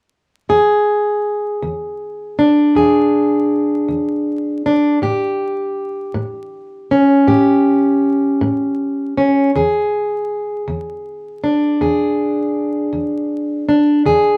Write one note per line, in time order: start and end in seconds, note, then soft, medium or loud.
0.49 1.17 E2 medium
0.49 2.75 G#4 medium
1.62 2.31 E2 medium
2.39 4.65 D4 medium
2.75 3.44 E2 medium
2.75 4.98 G#4 medium
3.88 4.57 E2 medium
4.66 4.99 D4 medium
5.02 5.70 A2 medium
5.02 7.27 G4 medium
6.14 6.83 A2 medium
6.91 9.16 C#4 medium
7.27 7.96 A2 medium
7.27 9.50 G4 medium
8.41 9.09 A2 medium
9.17 9.51 C#4 medium
9.55 10.23 E2 medium
9.55 11.81 G#4 medium
10.68 11.36 E2 medium
11.44 13.67 D4 medium
11.81 12.49 E2 medium
11.81 14.03 G#4 medium
12.93 13.61 E2 medium
13.69 14.02 D4 medium
14.06 14.37 E2 medium
14.06 14.37 G#4 medium